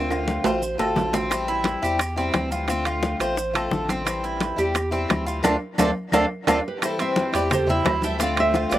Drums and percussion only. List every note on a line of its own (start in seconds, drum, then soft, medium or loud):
0.10 high bongo soft
0.10 high conga soft
0.10 high timbale medium
0.10 claves medium
0.10 maracas soft
0.28 high bongo medium
0.28 high conga medium
0.28 maracas soft
0.44 high conga soft
0.44 low timbale medium
0.44 maracas medium
0.62 high conga soft
0.62 maracas medium
0.79 low bongo medium
0.79 high conga soft
0.79 low timbale medium
0.79 claves medium
0.79 maracas soft
0.96 low bongo medium
0.96 high conga medium
0.96 low timbale medium
0.96 maracas soft
1.13 low bongo medium
1.13 low timbale medium
1.13 maracas medium
1.31 high bongo medium
1.31 high conga soft
1.31 high timbale medium
1.31 claves medium
1.31 maracas medium
1.48 high conga soft
1.48 maracas soft
1.64 high bongo medium
1.64 high conga medium
1.64 high timbale medium
1.64 maracas soft
1.83 high conga soft
1.83 maracas medium
1.99 high bongo medium
1.99 high conga soft
1.99 high timbale medium
1.99 claves medium
1.99 maracas medium
2.17 high conga soft
2.17 maracas soft
2.34 high bongo medium
2.34 low bongo medium
2.34 high conga medium
2.34 high timbale medium
2.34 claves medium
2.34 maracas soft
2.51 high conga soft
2.51 maracas medium
2.68 high bongo medium
2.68 high conga soft
2.68 high timbale medium
2.68 maracas medium
2.85 high bongo soft
2.85 high conga soft
2.85 high timbale medium
2.85 claves medium
2.85 maracas soft
3.03 high bongo medium
3.03 high conga medium
3.03 maracas soft
3.19 high conga soft
3.19 high timbale medium
3.19 maracas medium
3.37 high bongo medium
3.37 high conga soft
3.37 maracas medium
3.54 high bongo soft
3.54 high conga soft
3.54 high timbale medium
3.54 claves medium
3.54 maracas soft
3.71 high bongo medium
3.71 low bongo medium
3.71 high conga medium
3.71 maracas soft
3.89 high bongo soft
3.89 high conga medium
3.89 high timbale medium
3.89 maracas medium
4.06 high bongo medium
4.06 high conga soft
4.06 high timbale medium
4.06 claves medium
4.06 maracas medium
4.24 high conga soft
4.24 maracas soft
4.40 high bongo medium
4.40 high conga medium
4.40 high timbale medium
4.40 maracas soft
4.58 high conga soft
4.58 maracas medium
4.75 high bongo medium
4.75 high conga soft
4.75 high timbale medium
4.75 claves medium
4.75 maracas medium
4.93 high conga soft
4.93 maracas soft
5.09 high bongo medium
5.09 low bongo medium
5.09 high conga medium
5.09 high timbale loud
5.09 claves medium
5.09 maracas soft
5.27 high conga soft
5.27 maracas medium
5.44 high bongo loud
5.44 high conga medium
5.44 high timbale medium
5.44 claves loud
5.44 maracas loud
5.78 high bongo medium
5.78 high conga loud
5.78 high timbale medium
5.78 claves medium
5.78 maracas loud
6.12 high bongo medium
6.12 high conga loud
6.12 high timbale medium
6.12 claves loud
6.12 maracas medium
6.47 high bongo loud
6.47 high conga medium
6.47 high timbale loud
6.47 claves medium
6.47 maracas loud
6.82 high bongo medium
6.82 high conga soft
6.82 high timbale medium
6.82 claves medium
6.82 maracas medium
6.99 high conga soft
6.99 high timbale medium
6.99 maracas soft
7.16 high bongo medium
7.16 high conga loud
7.16 maracas soft
7.34 high timbale medium
7.34 maracas medium
7.51 high bongo medium
7.51 high conga soft
7.51 low conga medium
7.51 high timbale medium
7.51 claves medium
7.51 maracas medium
7.67 high conga soft
7.67 low conga medium
7.67 maracas soft
7.85 high bongo medium
7.85 low bongo medium
7.85 high conga medium
7.85 high timbale medium
7.85 low timbale medium
7.85 claves medium
7.85 maracas soft
8.02 high conga medium
8.02 maracas medium
8.20 high bongo medium
8.20 high conga soft
8.20 high timbale medium
8.20 maracas medium
8.36 high conga soft
8.36 high timbale medium
8.36 claves medium
8.36 maracas soft
8.54 high bongo medium
8.54 high conga medium
8.54 maracas soft
8.71 high bongo soft
8.71 high conga soft
8.71 high timbale medium
8.71 maracas medium